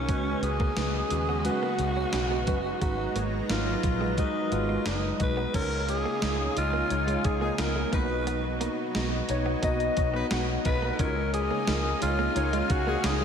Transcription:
Already playing: A#3 C#4 D#4 F#4 G#4 C#5
0.08 C#2 C#3 F#3 G#3 B3 C#4 D#4 F#4 B4, kick, closed hi-hat
0.42 C#2 G#3 C#4 F#4 G#4 B4, muted clean electric guitar stroke, closed hi-hat
0.60 A#3, kick
0.76 C#2 G#3 C#4 F#4 B4, snare, closed hi-hat
0.95 muted clean electric guitar stroke
1.10 D#2 G#3 C#4 F#4 B4, closed hi-hat
1.29 B3
1.44 G#3 C#4 F#4 B4, closed hi-hat
1.63 A#3
1.79 C#2 G#3 C#4 F#4 B4, muted clean electric guitar stroke, closed hi-hat
1.97 C#4
2.13 B1 G#3 C#4 F#4 B4, muted clean electric guitar stroke, snare, closed hi-hat
2.31 B3
2.47 F#1 F#3 G#3 C#4 F#4 B4, kick, closed hi-hat
2.81 G#1 G#2 G#3 B3 D#4 F#4 B4 A#5, kick, closed hi-hat
2.98 muted clean electric guitar stroke
3.15 G#1 G#3 A#3 D#4 F#4 C#5, closed hi-hat
3.49 G#1 F#3 G#3 A#3 D#4 F4 A#4, snare, closed hi-hat
3.83 A#1 F#3 G#3 D#4 B4, muted clean electric guitar stroke, kick, closed hi-hat
4.01 G#3
4.18 F#3 G#3 D#4 F#4 B4, kick, closed hi-hat
4.52 G#1 F#3 G#3 D#4 F4 B4, muted clean electric guitar stroke, closed hi-hat
4.69 G#3
4.86 F#1 G#3 D#4 F#4 B4, snare, closed hi-hat
5.20 B1 G#3 D#4 F#4 B4, muted clean electric guitar stroke, kick, closed hi-hat
5.37 B3
5.53 C#2 C#3 G#3 C#4 D#4 F4 G#4 A#4 C#5, kick, closed hi-hat, crash
5.88 G#3 D#4 F4 G#4 C#5, muted clean electric guitar stroke, closed hi-hat
6.05 A#3
6.22 C#2 G#3 D#4 F4 C#5, snare, closed hi-hat
6.40 muted clean electric guitar stroke
6.56 C#2 G#3 D#4 F4 D#5, closed hi-hat
6.73 A#3
6.90 C#2 G#3 D#4 F4 C#5, closed hi-hat
7.07 G#3, closed hi-hat
7.24 C#2 G#3 D#4 F4 G#4 C#5, muted clean electric guitar stroke, kick, closed hi-hat
7.41 F3 G#3 A#3 D#4 G#4
7.58 C#2 G#3 B3 D#4 F4 A#4, muted clean electric guitar stroke, snare, closed hi-hat
7.76 G#3
7.92 B1 B2 F#3 A#3 B3 D#4 F#4 B4 D#5, kick, closed hi-hat
8.27 B3, closed hi-hat
8.44 muted clean electric guitar stroke
8.61 A#3 B3 D#4 F#4 D#5, closed hi-hat
8.95 B1 G#3 B3 D#4 F#4 D#5, snare, closed hi-hat
9.29 B1 B3 D#4 F#4 C#5, muted clean electric guitar stroke, closed hi-hat
9.46 B3
9.62 B1 A#3 B3 D#4 F#4 D#5, kick, closed hi-hat
9.80 closed hi-hat
9.97 B1 B3 D#4 F#4 D#5, muted clean electric guitar stroke, kick, closed hi-hat
10.14 F#3 B3 D#4 B4
10.31 B1 G#3 B3 D#4 F#4 F#5, snare, closed hi-hat
10.65 B1 G#3 B3 D#4 F4 F#4 B4 D#5, muted clean electric guitar stroke, kick, closed hi-hat
10.82 A#3
10.99 C#2 C#3 G#3 C#4 D#4 F4 G#4 A#4 C#5 F5, kick, closed hi-hat
11.32 G#3 D#4 F4 G#4 C#5, muted clean electric guitar stroke, closed hi-hat
11.51 A#3
11.67 C#2 G#3 D#4 F4 A#4, snare, closed hi-hat
11.85 muted clean electric guitar stroke
12.01 C#2 G#3 D#4 F4 C#5, closed hi-hat
12.19 A#3
12.35 C#2 G#3 D#4 F4 C#5, closed hi-hat
12.53 G#3, closed hi-hat
12.70 C#2 G#3 D#4 F#4 C#5 F5, muted clean electric guitar stroke, kick, closed hi-hat
12.87 F3 G#3 A#3 D#4 G#4
13.04 C#2 G#3 D#4 F4 G#4 C#5, muted clean electric guitar stroke, snare, closed hi-hat
13.21 G#3

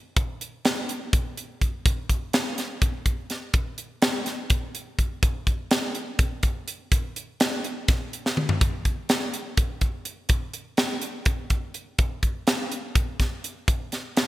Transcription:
0.16 kick, closed hi-hat
0.41 closed hi-hat
0.65 snare, closed hi-hat
0.89 closed hi-hat
1.13 kick, closed hi-hat
1.37 closed hi-hat
1.61 kick, closed hi-hat
1.86 kick, closed hi-hat
2.09 kick, closed hi-hat
2.33 snare, closed hi-hat
2.58 snare, closed hi-hat
2.82 kick, closed hi-hat
3.06 kick, closed hi-hat
3.30 snare, closed hi-hat
3.54 kick, closed hi-hat
3.78 closed hi-hat
4.02 snare, closed hi-hat
4.26 snare, closed hi-hat
4.50 kick, closed hi-hat
4.75 closed hi-hat
4.99 kick, closed hi-hat
5.23 kick, closed hi-hat
5.47 kick, closed hi-hat
5.71 snare, closed hi-hat
5.95 closed hi-hat
6.19 kick, closed hi-hat
6.43 kick, closed hi-hat
6.68 closed hi-hat
6.92 kick, closed hi-hat
7.16 closed hi-hat
7.40 snare, closed hi-hat
7.64 closed hi-hat
7.88 kick, snare, closed hi-hat
8.13 closed hi-hat
8.26 snare
8.37 mid tom
8.49 floor tom
8.61 kick, closed hi-hat
8.85 kick, closed hi-hat
9.09 snare, closed hi-hat
9.34 closed hi-hat
9.57 kick, closed hi-hat
9.81 kick, closed hi-hat
10.05 closed hi-hat
10.29 kick, closed hi-hat
10.54 closed hi-hat
10.77 snare, closed hi-hat
11.01 closed hi-hat
11.25 kick, closed hi-hat
11.50 kick, closed hi-hat
11.74 closed hi-hat
11.98 kick, closed hi-hat
12.23 kick, closed hi-hat
12.47 snare, closed hi-hat
12.72 closed hi-hat
12.95 kick, closed hi-hat
13.20 kick, snare, closed hi-hat
13.44 closed hi-hat
13.68 kick, closed hi-hat
13.92 snare, closed hi-hat
14.17 snare, closed hi-hat

